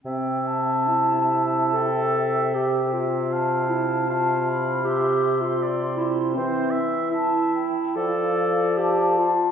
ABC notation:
X:1
M:4/4
L:1/16
Q:1/4=76
K:C
V:1 name="Flute"
g2 a6 g2 g6 | a4 a2 b2 c'8- | c'2 z2 a2 g2 f2 f2 a4 |]
V:2 name="Oboe"
e12 e4 | f4 f4 e4 d4 | c2 e2 e2 z2 d8 |]
V:3 name="Clarinet"
C4 E4 A4 G2 F2- | F2 E2 F4 G3 F3 E2 | C3 z E4 A4 G2 F2 |]
V:4 name="Bassoon" clef=bass
C,16- | C,16 | E,6 z2 F,8 |]